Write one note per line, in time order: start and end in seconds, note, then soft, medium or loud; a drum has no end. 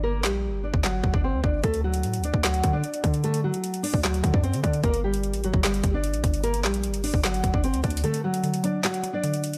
0.00 0.25 G1 loud
0.00 0.19 A#4 loud
0.04 0.20 A#3 medium
0.24 0.50 A#1 loud
0.24 0.62 G3 medium
0.24 0.61 G4 medium
0.24 snare loud
0.24 clap medium
0.49 0.72 G1 loud
0.63 0.79 D4 medium
0.63 0.80 D5 medium
0.74 1.02 G1 loud
0.74 kick loud
0.84 1.12 F#3 medium
0.84 1.12 F#4 medium
0.84 snare loud
0.84 clap medium
1.04 1.13 G1 loud
1.04 kick medium
1.13 1.35 G1 loud
1.13 1.21 D4 medium
1.13 1.22 D5 medium
1.13 kick medium
1.24 1.39 C4 medium
1.24 1.40 C5 medium
1.34 1.43 D2 loud
1.44 1.63 G1 loud
1.44 1.60 D4 medium
1.44 1.60 D5 medium
1.44 kick medium
1.64 2.05 D2 loud
1.64 1.80 A3 medium
1.64 1.80 A4 loud
1.64 kick loud
1.64 closed hi-hat medium
1.74 closed hi-hat medium
1.84 2.22 F#3 medium
1.84 2.21 F#4 medium
1.94 closed hi-hat medium
2.03 2.20 A2 loud
2.03 closed hi-hat medium
2.14 closed hi-hat medium
2.19 2.33 D2 loud
2.24 2.40 D4 medium
2.24 2.40 D5 medium
2.24 closed hi-hat medium
2.34 2.62 D2 loud
2.34 kick medium
2.44 2.73 F#3 medium
2.44 2.72 F#4 medium
2.44 snare loud
2.44 clap medium
2.44 closed hi-hat medium
2.54 closed hi-hat soft
2.64 2.83 D3 loud
2.64 kick medium
2.64 closed hi-hat medium
2.73 3.20 D4 medium
2.73 3.21 D5 medium
2.84 closed hi-hat medium
2.94 closed hi-hat medium
3.04 3.52 D3 loud
3.04 kick medium
3.04 closed hi-hat medium
3.14 closed hi-hat medium
3.24 3.40 A3 medium
3.24 3.40 A4 loud
3.24 closed hi-hat medium
3.34 closed hi-hat medium
3.44 3.82 F#3 medium
3.44 3.81 F#4 medium
3.54 closed hi-hat medium
3.64 closed hi-hat medium
3.74 closed hi-hat medium
3.83 3.99 D4 medium
3.83 4.00 D5 medium
3.83 open hi-hat medium
3.94 4.22 D2 loud
3.94 kick loud
4.04 4.32 F#3 medium
4.04 4.32 F#4 medium
4.04 snare loud
4.04 clap medium
4.04 closed hi-hat medium
4.14 closed hi-hat medium
4.24 4.33 D3 loud
4.24 kick loud
4.24 closed hi-hat medium
4.34 4.55 F#2 loud
4.34 4.41 D4 medium
4.34 4.42 D5 medium
4.34 kick medium
4.43 4.59 C4 medium
4.43 4.60 C5 medium
4.43 closed hi-hat medium
4.54 4.63 D3 loud
4.54 closed hi-hat medium
4.63 4.83 D3 loud
4.63 4.79 D4 medium
4.63 4.79 D5 medium
4.63 kick medium
4.63 closed hi-hat medium
4.73 closed hi-hat medium
4.83 5.35 G1 loud
4.83 5.00 A#3 medium
4.83 4.99 A#4 loud
4.83 kick loud
4.83 closed hi-hat medium
4.94 closed hi-hat medium
5.04 5.42 G3 medium
5.04 5.41 G4 medium
5.14 closed hi-hat medium
5.24 closed hi-hat medium
5.34 5.45 A1 loud
5.34 closed hi-hat medium
5.44 5.53 G1 loud
5.44 5.60 F#3 medium
5.44 5.60 F#4 medium
5.44 closed hi-hat medium
5.54 5.82 G1 loud
5.54 kick loud
5.64 5.92 G3 medium
5.64 5.92 G4 medium
5.64 snare loud
5.64 clap medium
5.64 closed hi-hat medium
5.74 closed hi-hat medium
5.84 6.15 G1 loud
5.84 kick loud
5.84 closed hi-hat medium
5.94 6.41 D4 medium
5.94 6.41 D5 medium
6.04 closed hi-hat medium
6.14 6.23 A1 loud
6.14 closed hi-hat medium
6.24 6.65 G1 loud
6.24 kick medium
6.24 closed hi-hat medium
6.34 closed hi-hat medium
6.43 6.60 A#3 medium
6.43 6.59 A#4 loud
6.43 closed hi-hat medium
6.54 closed hi-hat medium
6.64 6.90 A#1 medium
6.64 7.02 G3 medium
6.64 7.02 G4 medium
6.64 snare medium
6.64 clap medium
6.74 closed hi-hat medium
6.84 closed hi-hat medium
6.89 7.12 G1 loud
6.94 closed hi-hat medium
7.04 7.19 D4 medium
7.04 7.20 D5 medium
7.04 open hi-hat medium
7.14 7.42 G1 loud
7.14 kick medium
7.24 7.52 F#3 medium
7.24 7.52 F#4 medium
7.24 snare loud
7.24 clap medium
7.24 closed hi-hat medium
7.34 closed hi-hat medium
7.44 7.53 G1 loud
7.44 kick medium
7.44 closed hi-hat medium
7.53 7.75 G1 loud
7.53 7.61 D4 medium
7.53 7.62 D5 medium
7.53 kick medium
7.64 7.79 C4 medium
7.64 7.80 C5 medium
7.64 closed hi-hat medium
7.74 7.83 D2 loud
7.74 closed hi-hat medium
7.84 8.04 D2 loud
7.84 7.99 D4 medium
7.84 8.00 D5 medium
7.84 kick medium
7.84 closed hi-hat soft
7.90 closed hi-hat medium
7.97 closed hi-hat medium
8.04 8.42 D3 medium
8.04 8.20 A3 medium
8.04 8.20 A4 loud
8.04 closed hi-hat medium
8.14 closed hi-hat medium
8.24 8.62 F#3 medium
8.24 8.61 F#4 medium
8.34 closed hi-hat medium
8.44 9.23 D3 medium
8.44 closed hi-hat medium
8.54 closed hi-hat medium
8.64 9.02 F#3 medium
8.64 8.80 D4 medium
8.64 8.80 D5 medium
8.64 closed hi-hat medium
8.84 9.13 F#3 medium
8.84 9.12 F#4 medium
8.84 snare loud
8.84 clap medium
8.84 closed hi-hat medium
8.94 closed hi-hat medium
9.03 9.58 F#3 medium
9.03 closed hi-hat medium
9.13 9.58 D4 medium
9.13 9.58 D5 medium
9.24 9.58 D3 medium
9.24 closed hi-hat medium
9.34 closed hi-hat medium
9.44 closed hi-hat medium
9.54 closed hi-hat medium